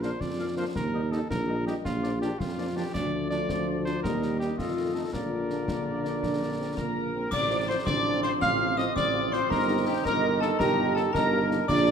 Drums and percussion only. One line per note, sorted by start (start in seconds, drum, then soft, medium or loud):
0.03 snare medium
0.21 concert bass drum medium
0.21 snare medium
0.76 concert bass drum medium
0.76 snare medium
1.12 snare soft
1.31 concert bass drum medium
1.31 snare medium
1.67 snare soft
1.85 concert bass drum medium
1.85 snare medium
2.04 snare medium
2.22 snare medium
2.40 concert bass drum medium
2.40 snare medium
2.95 concert bass drum medium
2.95 snare medium
2.95 crash soft
3.31 snare soft
3.49 concert bass drum medium
3.49 snare medium
3.86 snare soft
4.04 concert bass drum medium
4.04 snare medium
4.22 snare medium
4.41 snare soft
4.59 concert bass drum medium
4.59 snare medium
5.13 concert bass drum medium
5.13 snare medium
5.50 snare soft
5.68 concert bass drum medium
5.68 snare medium
6.05 snare soft
6.23 concert bass drum medium
6.23 snare medium
6.77 concert bass drum medium
6.77 snare medium
7.32 concert bass drum medium
7.32 snare medium
7.32 crash medium
7.87 concert bass drum medium
7.87 snare medium
8.23 snare medium
8.42 concert bass drum medium
8.42 snare medium
8.78 snare medium
8.96 concert bass drum medium
8.96 snare medium
9.33 snare medium
9.51 concert bass drum medium
9.51 snare medium
10.05 concert bass drum medium
10.05 snare medium
10.42 snare medium
10.60 concert bass drum medium
10.60 snare medium
10.96 snare medium
11.15 concert bass drum medium
11.15 snare medium
11.51 snare medium
11.69 concert bass drum medium
11.69 snare medium
11.69 crash soft